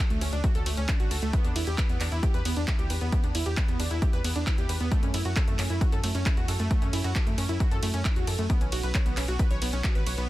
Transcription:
0.10 analog synth bass D2, synth pluck A3, closed hi-hat
0.21 analog synth bass D2, synth pluck C#4, open hi-hat, ride
0.33 analog synth bass D2, synth pluck D4, closed hi-hat
0.44 synth pluck F#4, kick, closed hi-hat
0.55 analog synth bass D2, synth pluck A4, closed hi-hat
0.66 analog synth bass D2, synth pluck A3, open hi-hat, ride
0.77 analog synth bass D2, synth pluck C#4, closed hi-hat
0.89 kick, clap, closed hi-hat
1.00 analog synth bass A1, synth pluck F#4, closed hi-hat
1.11 analog synth bass D2, synth pluck A4, open hi-hat, ride
1.22 analog synth bass D2, synth pluck A3, closed hi-hat
1.33 synth pluck B3, kick, closed hi-hat
1.45 analog synth bass E2, synth pluck D4, closed hi-hat
1.56 analog synth bass E2, synth pluck E4, open hi-hat, ride
1.67 analog synth bass E2, synth pluck G4, closed hi-hat
1.78 synth pluck B4, kick, clap, closed hi-hat
1.89 analog synth bass E2, synth pluck B3, closed hi-hat
2.00 analog synth bass E2, synth pluck D4, clap, open hi-hat, ride
2.12 analog synth bass E2, synth pluck E4, closed hi-hat
2.23 synth pluck G4, kick, closed hi-hat
2.34 analog synth bass E2, synth pluck B4, closed hi-hat
2.45 analog synth bass E2, synth pluck B3, open hi-hat, ride
2.56 analog synth bass E2, synth pluck D4, closed hi-hat
2.68 synth pluck E4, kick, clap, closed hi-hat
2.79 analog synth bass D2, synth pluck G4, closed hi-hat
2.90 analog synth bass E2, synth pluck B4, open hi-hat, ride
3.01 analog synth bass E2, synth pluck B3, closed hi-hat
3.12 synth pluck B3, kick, closed hi-hat
3.24 analog synth bass E2, synth pluck D4, closed hi-hat
3.35 analog synth bass E2, synth pluck E4, open hi-hat, ride
3.46 analog synth bass E2, synth pluck G4, closed hi-hat
3.57 synth pluck B4, kick, clap, closed hi-hat
3.68 analog synth bass E2, synth pluck B3, closed hi-hat
3.80 analog synth bass E2, synth pluck D4, open hi-hat, ride
3.91 analog synth bass E2, synth pluck E4, closed hi-hat
4.02 synth pluck G4, kick, closed hi-hat
4.13 analog synth bass E2, synth pluck B4, closed hi-hat
4.24 analog synth bass E2, synth pluck B3, open hi-hat, ride
4.36 analog synth bass E2, synth pluck D4, closed hi-hat
4.47 synth pluck E4, kick, clap, closed hi-hat
4.58 analog synth bass E2, synth pluck G4, closed hi-hat
4.69 analog synth bass E2, synth pluck B4, open hi-hat, ride
4.80 analog synth bass E2, synth pluck B3, closed hi-hat
4.92 synth pluck A3, kick, closed hi-hat
5.03 analog synth bass F#2, synth pluck C#4, closed hi-hat
5.14 analog synth bass F#2, synth pluck E4, open hi-hat, ride
5.25 analog synth bass F#2, synth pluck F#4, closed hi-hat
5.36 synth pluck A4, kick, clap, closed hi-hat
5.48 analog synth bass F#2, synth pluck A3, closed hi-hat
5.59 analog synth bass F#2, synth pluck C#4, clap, open hi-hat, ride
5.70 analog synth bass F#2, synth pluck E4, closed hi-hat
5.81 synth pluck F#4, kick, closed hi-hat
5.92 analog synth bass F#2, synth pluck A4, closed hi-hat
6.03 analog synth bass F#2, synth pluck A3, open hi-hat, ride
6.15 analog synth bass F#2, synth pluck C#4, closed hi-hat
6.26 kick, clap, closed hi-hat
6.37 analog synth bass E2, synth pluck F#4, closed hi-hat
6.48 analog synth bass F#2, synth pluck A4, open hi-hat, ride
6.59 analog synth bass F#2, synth pluck A3, closed hi-hat
6.71 synth pluck A3, kick, closed hi-hat
6.82 analog synth bass F#2, synth pluck C#4, closed hi-hat
6.93 analog synth bass F#2, synth pluck E4, open hi-hat, ride
7.04 analog synth bass F#2, synth pluck F#4, closed hi-hat
7.15 synth pluck A4, kick, clap, closed hi-hat
7.27 analog synth bass F#2, synth pluck A3, closed hi-hat
7.38 analog synth bass F#2, synth pluck C#4, open hi-hat, ride
7.49 analog synth bass F#2, synth pluck E4, closed hi-hat
7.60 synth pluck F#4, kick, closed hi-hat
7.71 analog synth bass F#2, synth pluck A4, closed hi-hat
7.83 analog synth bass F#2, synth pluck A3, open hi-hat, ride
7.94 analog synth bass F#2, synth pluck C#4, closed hi-hat
8.05 synth pluck E4, kick, clap, closed hi-hat
8.16 analog synth bass E2, synth pluck F#4, closed hi-hat
8.27 analog synth bass F#2, synth pluck A4, open hi-hat, ride
8.39 analog synth bass F#2, synth pluck A3, closed hi-hat
8.50 synth pluck B3, kick, closed hi-hat
8.61 analog synth bass B1, synth pluck C#4, closed hi-hat
8.72 analog synth bass B1, synth pluck F#4, open hi-hat, ride
8.83 analog synth bass B1, synth pluck B4, closed hi-hat
8.95 synth pluck C#5, kick, clap, closed hi-hat
9.06 analog synth bass B1, synth pluck B3, closed hi-hat
9.17 analog synth bass B1, synth pluck C#4, clap, open hi-hat, ride
9.28 analog synth bass B1, synth pluck F#4, closed hi-hat
9.39 synth pluck B4, kick, closed hi-hat
9.51 analog synth bass B1, synth pluck C#5, closed hi-hat
9.62 analog synth bass B1, synth pluck B3, open hi-hat, ride
9.73 analog synth bass B1, synth pluck C#4, closed hi-hat
9.84 synth pluck F#4, kick, clap, closed hi-hat
9.95 analog synth bass A1, synth pluck B4, closed hi-hat
10.06 analog synth bass B1, synth pluck C#5, open hi-hat, ride
10.18 analog synth bass B1, synth pluck B3, closed hi-hat

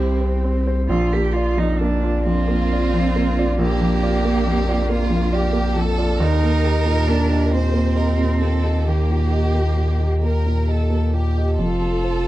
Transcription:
Already playing: grand piano C2 G3 C4 A#4 C5, sub bass C2, cello C4, string section C4 G4 C5, violin section E4
0.00 grand piano G4
0.21 grand piano C5
0.44 grand piano C4
0.67 grand piano C5
0.89 sub bass A#1, grand piano A#1, string section A#3 D4 F4, cello F4
1.13 grand piano A#3, cello G4
1.33 cello F4, grand piano F4 D5
1.57 grand piano F2, cello D#4
1.79 grand piano A#3, cello D4
2.03 grand piano F4 D5
2.25 grand piano F2, cello C4, violin section F4
2.48 grand piano A#3
2.72 grand piano F4 D5
2.94 grand piano F2
3.16 grand piano A#3
3.39 grand piano F4 D5
3.58 grand piano A#1, cello A#3, violin section G4
3.81 grand piano F2
4.02 grand piano F4 D5
4.25 grand piano A#3
4.46 grand piano F2
4.68 grand piano F4 D5
4.89 grand piano A#3, violin section F4
5.10 grand piano F2
5.32 grand piano F4 D5, violin section G4
5.53 grand piano A#3
5.76 grand piano F2, violin section A4
5.98 grand piano F4 D5
6.19 grand piano D#2, sub bass D#2, string section D#3 A#3 G4, cello D#4, violin section A#4
6.43 grand piano A#3
6.64 grand piano G4 D#5
6.85 grand piano A#2
7.07 grand piano A#3, cello D4
7.30 grand piano G4 D#5
7.51 grand piano A#2, cello C4, violin section C5
7.73 grand piano A#3
7.96 grand piano G4 D#5, violin section A#4
8.18 grand piano A#2
8.41 grand piano A#3, violin section A4
8.63 grand piano G4 D#5
8.87 grand piano D#2, cello A#3, violin section G4
9.10 grand piano A#2
9.31 grand piano G4 D#5
9.54 grand piano A#3
9.77 grand piano A#2
9.99 grand piano G4 D#5
10.23 grand piano A#3, violin section A#4
10.46 grand piano A#2
10.67 grand piano G4 D#5, violin section A4
10.90 grand piano A#3
11.13 grand piano A#2, violin section G4
11.37 grand piano G4 D#5
11.58 sub bass F1, grand piano F2, string section C4 F4 C5, cello F4, violin section A4
11.81 grand piano F3
12.04 grand piano F4 C5

